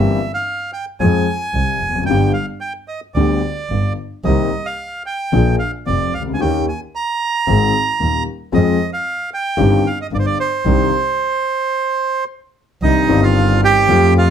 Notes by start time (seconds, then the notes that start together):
Already playing: G1 G2 E3 A#3 C4 G4 E5
0.34 F5
0.73 G5
1.00 F2 F3 G#3 C4 G#4 G#5
1.54 C2 C3
1.81 F1
1.90 E2
1.96 F2
2.04 F#2 G5
2.08 G1 G2 D3 G3 B3 G4
2.33 F5
2.61 G5
2.88 D#5
3.14 D2 D3 G3 B3 G4 D5
3.69 G1 G2
4.24 C2 C3 D#3 A#3 C4 G4 D#5
4.66 F5
5.06 G5
5.32 A#1 A#2 F3 A#3 D4 G#4
5.59 F5
5.86 F1 F2 D5
6.14 C#2 F5
6.21 C2
6.28 C#2
6.34 D2 G#5
6.40 D#2 D#3 A#3 C#4 G4 G5
6.69 G#5
6.95 A#5
7.47 G#1 G#2 D#3 G#3 C4 G#4
8.00 D#1 D#2
8.52 F2 F3 G#3 C4 G#4 D#5
8.93 F5
9.34 G5
9.57 G1 G2 D#3 G3 C4 G4
9.87 F5
10.02 D#5
10.11 G1 G2 D5
10.19 C5
10.26 D5
10.40 C5
10.65 C2 C3 D#3 C4 D4 G4
12.81 C2 C3 D#3 C4 D4 D#4 G4 D#5
13.08 G1 G2 D#3 C4 D4
13.12 G4
13.23 F4 F5
13.64 G4 G5
13.88 F2 F3 A3 C4 G4
14.18 F4 F5